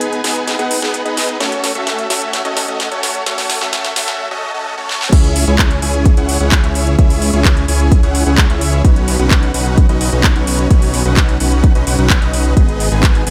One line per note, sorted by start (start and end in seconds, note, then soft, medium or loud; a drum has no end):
0.00 0.21 B3 medium
0.00 0.21 D#4 medium
0.00 0.21 G#4 medium
0.00 0.21 B4 medium
0.00 0.21 G#5 loud
0.00 closed hi-hat medium
0.13 closed hi-hat soft
0.24 0.56 B3 medium
0.24 0.56 D#4 medium
0.24 0.56 G#4 medium
0.24 0.56 B4 medium
0.24 0.56 G#5 medium
0.24 snare medium
0.24 open hi-hat loud
0.36 closed hi-hat soft
0.48 snare medium
0.48 closed hi-hat medium
0.59 0.79 B3 loud
0.59 0.79 D#4 medium
0.59 0.79 G#4 medium
0.59 0.79 B4 medium
0.59 0.79 F#5 loud
0.59 closed hi-hat soft
0.71 open hi-hat loud
0.82 1.03 B3 medium
0.82 1.03 D#4 medium
0.82 1.03 G#4 medium
0.82 1.03 B4 medium
0.82 1.03 F#5 medium
0.82 snare medium
0.82 closed hi-hat soft
0.94 closed hi-hat medium
1.05 1.38 B3 medium
1.05 1.38 D#4 medium
1.05 1.38 G#4 medium
1.05 1.38 B4 medium
1.05 1.38 D#5 medium
1.05 closed hi-hat soft
1.17 snare medium
1.17 open hi-hat loud
1.29 closed hi-hat soft
1.40 1.72 A3 medium
1.40 1.72 C#4 medium
1.40 1.72 F#4 medium
1.40 1.72 A4 medium
1.40 1.72 C#5 loud
1.40 snare medium
1.40 closed hi-hat medium
1.52 closed hi-hat soft
1.64 snare medium
1.64 open hi-hat loud
1.75 2.07 A3 medium
1.75 2.07 C#4 medium
1.75 2.07 F#4 medium
1.75 2.07 A4 medium
1.75 2.07 E5 loud
1.75 closed hi-hat soft
1.87 snare medium
1.87 closed hi-hat medium
1.99 closed hi-hat soft
2.10 2.42 A3 medium
2.10 2.42 C#4 medium
2.10 2.42 F#4 medium
2.10 2.42 A4 medium
2.10 2.42 E5 medium
2.10 snare medium
2.10 open hi-hat loud
2.22 closed hi-hat soft
2.33 snare medium
2.33 closed hi-hat medium
2.45 2.65 A3 loud
2.45 2.65 C#4 medium
2.45 2.65 F#4 medium
2.45 2.65 A4 medium
2.45 2.65 D#5 loud
2.45 closed hi-hat soft
2.57 snare medium
2.57 open hi-hat loud
2.68 2.89 A3 medium
2.68 2.89 C#4 medium
2.68 2.89 F#4 medium
2.68 2.89 A4 medium
2.68 2.89 D#5 medium
2.68 closed hi-hat soft
2.80 snare medium
2.80 closed hi-hat medium
2.91 3.24 A3 medium
2.91 3.24 C#4 medium
2.91 3.24 F#4 medium
2.91 3.24 A4 medium
2.91 3.24 C#5 medium
2.91 closed hi-hat soft
3.03 snare medium
3.03 open hi-hat loud
3.15 closed hi-hat soft
3.26 3.58 A3 medium
3.26 3.58 C#4 medium
3.26 3.58 F#4 medium
3.26 3.58 A4 medium
3.26 3.58 C#5 loud
3.26 snare medium
3.26 closed hi-hat medium
3.38 snare medium
3.38 open hi-hat medium
3.50 snare loud
3.50 open hi-hat loud
3.61 3.93 A3 medium
3.61 3.93 C#4 medium
3.61 3.93 F#4 medium
3.61 3.93 A4 medium
3.61 3.93 E5 loud
3.61 snare medium
3.61 closed hi-hat soft
3.73 snare loud
3.73 closed hi-hat medium
3.85 snare medium
3.85 closed hi-hat soft
3.96 4.28 A3 medium
3.96 4.28 C#4 medium
3.96 4.28 F#4 medium
3.96 4.28 A4 medium
3.96 4.28 E5 medium
3.96 snare loud
3.96 open hi-hat loud
4.08 snare medium
4.08 closed hi-hat soft
4.31 4.52 A3 loud
4.31 4.52 C#4 medium
4.31 4.52 F#4 medium
4.31 4.52 A4 medium
4.31 4.52 D#5 loud
4.54 4.75 A3 medium
4.54 4.75 C#4 medium
4.54 4.75 F#4 medium
4.54 4.75 A4 medium
4.54 4.75 D#5 medium
4.77 5.10 A3 medium
4.77 5.10 C#4 medium
4.77 5.10 F#4 medium
4.77 5.10 A4 medium
4.77 5.10 C#5 medium
4.89 snare medium
5.01 snare medium
5.12 5.45 C#2 medium
5.12 5.45 C#4 medium
5.12 5.45 E4 medium
5.12 5.45 G#4 medium
5.12 5.45 C#5 medium
5.12 5.45 E5 medium
5.12 kick loud
5.12 closed hi-hat medium
5.12 crash loud
5.24 closed hi-hat soft
5.36 open hi-hat loud
5.47 5.80 C#2 loud
5.47 5.80 C#4 medium
5.47 5.80 E4 medium
5.47 5.80 G#4 medium
5.47 5.80 C#5 medium
5.47 5.80 G#5 loud
5.47 closed hi-hat soft
5.59 kick loud
5.59 clap loud
5.59 closed hi-hat medium
5.71 closed hi-hat soft
5.82 6.15 C#2 loud
5.82 6.14 C#4 medium
5.82 6.14 E4 medium
5.82 6.14 G#4 medium
5.82 6.14 C#5 medium
5.82 6.14 G#5 medium
5.82 open hi-hat loud
5.94 closed hi-hat soft
6.06 kick loud
6.06 closed hi-hat medium
6.17 6.38 C#2 medium
6.17 6.38 C#4 loud
6.17 6.38 E4 medium
6.17 6.38 G#4 medium
6.17 6.38 C#5 medium
6.17 6.38 F#5 loud
6.17 closed hi-hat soft
6.29 open hi-hat loud
6.40 6.61 C#2 medium
6.40 6.61 C#4 medium
6.40 6.61 E4 medium
6.40 6.61 G#4 medium
6.40 6.61 C#5 medium
6.40 6.61 F#5 medium
6.40 closed hi-hat soft
6.52 kick loud
6.52 clap loud
6.52 closed hi-hat medium
6.64 6.96 C#2 loud
6.64 6.96 C#4 medium
6.64 6.96 E4 medium
6.64 6.96 G#4 medium
6.64 6.96 C#5 medium
6.64 6.96 E5 medium
6.64 closed hi-hat soft
6.75 open hi-hat loud
6.87 closed hi-hat soft
6.99 7.31 C#2 loud
6.99 7.31 C#4 medium
6.99 7.31 E4 medium
6.99 7.31 G#4 medium
6.99 7.31 C#5 medium
6.99 7.31 E5 loud
6.99 kick loud
6.99 closed hi-hat medium
7.10 open hi-hat medium
7.22 open hi-hat loud
7.33 7.66 C#2 loud
7.33 7.66 C#4 medium
7.33 7.66 E4 medium
7.33 7.66 G#4 medium
7.33 7.66 C#5 medium
7.33 7.66 G#5 loud
7.33 closed hi-hat soft
7.45 kick loud
7.45 clap loud
7.45 closed hi-hat medium
7.57 closed hi-hat soft
7.68 8.01 C#2 loud
7.68 8.00 C#4 medium
7.68 8.00 E4 medium
7.68 8.00 G#4 medium
7.68 8.00 C#5 medium
7.68 8.00 G#5 medium
7.68 open hi-hat loud
7.80 closed hi-hat soft
7.92 kick loud
7.92 closed hi-hat medium
8.03 8.24 C#2 medium
8.03 8.24 C#4 loud
8.03 8.24 E4 medium
8.03 8.24 G#4 medium
8.03 8.24 C#5 medium
8.03 8.24 F#5 loud
8.03 closed hi-hat soft
8.15 open hi-hat loud
8.26 8.47 C#2 loud
8.26 8.47 C#4 medium
8.26 8.47 E4 medium
8.26 8.47 G#4 medium
8.26 8.47 C#5 medium
8.26 8.47 F#5 medium
8.26 closed hi-hat soft
8.38 kick loud
8.38 clap loud
8.38 closed hi-hat medium
8.50 8.82 C#2 medium
8.50 8.82 C#4 medium
8.50 8.82 E4 medium
8.50 8.82 G#4 medium
8.50 8.82 C#5 medium
8.50 8.82 E5 medium
8.50 closed hi-hat soft
8.61 open hi-hat loud
8.73 closed hi-hat soft
8.85 9.17 B1 loud
8.85 9.17 C#4 medium
8.85 9.17 D#4 medium
8.85 9.17 F#4 medium
8.85 9.17 B4 medium
8.85 9.17 C#5 loud
8.85 kick loud
8.85 closed hi-hat medium
8.96 closed hi-hat soft
9.08 open hi-hat loud
9.19 9.52 B1 loud
9.19 9.52 C#4 medium
9.19 9.52 D#4 medium
9.19 9.52 F#4 medium
9.19 9.52 B4 medium
9.19 9.52 F#5 loud
9.19 closed hi-hat soft
9.31 kick loud
9.31 clap loud
9.31 closed hi-hat medium
9.43 closed hi-hat soft
9.54 9.87 B1 loud
9.54 9.86 C#4 medium
9.54 9.86 D#4 medium
9.54 9.86 F#4 medium
9.54 9.86 B4 medium
9.54 9.86 F#5 medium
9.54 open hi-hat loud
9.66 closed hi-hat soft
9.78 kick loud
9.78 closed hi-hat medium
9.89 10.10 B1 medium
9.89 10.10 C#4 loud
9.89 10.10 D#4 medium
9.89 10.10 F#4 medium
9.89 10.10 B4 medium
9.89 10.10 D#5 loud
9.89 closed hi-hat soft
10.01 open hi-hat loud
10.12 10.33 B1 medium
10.12 10.33 C#4 medium
10.12 10.33 D#4 medium
10.12 10.33 F#4 medium
10.12 10.33 B4 medium
10.12 10.33 D#5 medium
10.12 closed hi-hat soft
10.24 kick loud
10.24 clap loud
10.24 closed hi-hat medium
10.36 10.68 B1 loud
10.36 10.68 C#4 medium
10.36 10.68 D#4 medium
10.36 10.68 F#4 medium
10.36 10.68 B4 medium
10.36 10.68 C#5 medium
10.36 closed hi-hat soft
10.47 open hi-hat loud
10.59 closed hi-hat soft
10.70 11.03 B1 medium
10.70 11.03 C#4 medium
10.70 11.03 D#4 medium
10.70 11.03 F#4 medium
10.70 11.03 B4 medium
10.70 11.03 C#5 medium
10.70 kick loud
10.70 closed hi-hat medium
10.82 open hi-hat medium
10.94 open hi-hat loud
11.05 11.38 B1 loud
11.05 11.38 C#4 medium
11.05 11.38 D#4 medium
11.05 11.38 F#4 medium
11.05 11.38 B4 medium
11.05 11.38 F#5 loud
11.05 closed hi-hat soft
11.17 kick loud
11.17 clap loud
11.17 closed hi-hat medium
11.29 closed hi-hat soft
11.40 11.73 B1 loud
11.40 11.72 C#4 medium
11.40 11.72 D#4 medium
11.40 11.72 F#4 medium
11.40 11.72 B4 medium
11.40 11.72 F#5 medium
11.40 open hi-hat loud
11.64 kick loud
11.64 closed hi-hat medium
11.75 11.85 B1 loud
11.75 11.85 C#4 loud
11.75 11.85 D#4 medium
11.75 11.85 F#4 medium
11.75 11.85 B4 medium
11.75 11.85 D#5 loud
11.75 closed hi-hat soft
11.87 11.96 B1 loud
11.87 11.97 C#4 medium
11.87 11.97 D#4 medium
11.87 11.97 F#4 medium
11.87 11.97 B4 medium
11.87 11.97 F#5 loud
11.87 open hi-hat loud
11.98 12.20 B1 medium
11.98 12.19 C#4 loud
11.98 12.19 D#4 medium
11.98 12.19 F#4 medium
11.98 12.19 B4 medium
11.98 12.19 F#5 loud
12.10 kick loud
12.10 clap loud
12.10 closed hi-hat medium
12.22 12.54 B1 loud
12.22 12.54 C#4 medium
12.22 12.54 D#4 medium
12.22 12.54 F#4 medium
12.22 12.54 B4 medium
12.22 12.54 D#5 loud
12.22 closed hi-hat soft
12.34 open hi-hat loud
12.57 12.89 G#1 loud
12.57 12.89 B3 medium
12.57 12.89 D#4 medium
12.57 12.89 G#4 medium
12.57 12.89 B4 medium
12.57 12.89 D#5 loud
12.57 kick loud
12.57 closed hi-hat medium
12.69 closed hi-hat soft
12.80 open hi-hat loud
12.91 13.24 G#1 loud
12.91 13.24 B3 medium
12.91 13.24 D#4 medium
12.91 13.24 G#4 medium
12.91 13.24 B4 medium
12.91 13.24 G#5 loud
12.91 closed hi-hat soft
13.03 kick loud
13.03 clap loud
13.03 closed hi-hat medium
13.15 closed hi-hat soft
13.26 13.30 G#1 loud
13.26 13.30 B3 medium
13.26 13.30 D#4 medium
13.26 13.30 G#4 medium
13.26 13.30 B4 medium
13.26 13.30 G#5 medium
13.26 open hi-hat loud